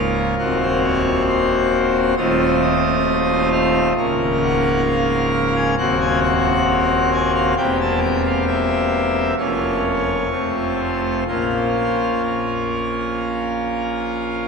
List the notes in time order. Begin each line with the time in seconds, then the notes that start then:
Already playing: C#1 C#2 A#3 C#4 F4 A#4
0.39 D#1 D#2 A#3 C4 F#4
0.62 C5
0.85 C#5
1.29 C5
2.17 D#1 D#2 A3 C4 F4 D#5
2.62 D#5
3.53 F5
3.98 C#1 C#2 A#3 C#4 A#4
4.43 F#5
4.87 F5
5.56 G#5
5.78 D#1 D#2 A#3 C4 F#4 F#5
6.00 G#5
6.23 F#5
7.13 G#5
7.36 F5
7.57 E1 E2 A#3 C4 G4 G5
7.81 A5
8.03 G5
8.26 F5
8.48 E5
9.38 F1 F2 A#3 C#4 F4 C#5
10.31 F1 F2 A3 C4 F4
10.79 C5
11.28 A#1 A#2 A#3 C#4 F4 C5
12.25 A#4